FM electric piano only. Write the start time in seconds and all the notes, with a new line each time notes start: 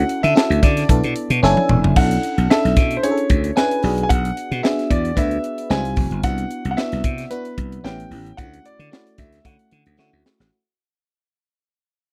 Already playing: C#4 E4 F#4 A4
0.35 C#4 E4 F#4 A4
0.89 B3 D4 E4 A4
1.43 C#4 D4 E4 A4
1.97 C#4 D4 E4 A4
2.50 C#4 D4 E4 A4
3.04 C#4 D4 E4 G#4
3.11 A4
3.56 C#4 D4 E4 B4
3.83 B3 D4 F#4 G#4
4.63 B3 D4 F#4 G#4
5.16 B3 D4 F#4 B4
5.70 G3 C4 D#4 E4
5.77 F4
6.24 B3 D4 E4 F#4
6.77 B3 D4 E4 F#4
7.31 B3 D4 E4 F#4
7.84 B3 C#4 E4 G4
8.38 A3 C#4 E4 F4
8.45 F#4
8.91 A3 C#4 E4 F#4
9.44 A3 C#4 E4 F#4
9.98 A3 C#4 E4 F#4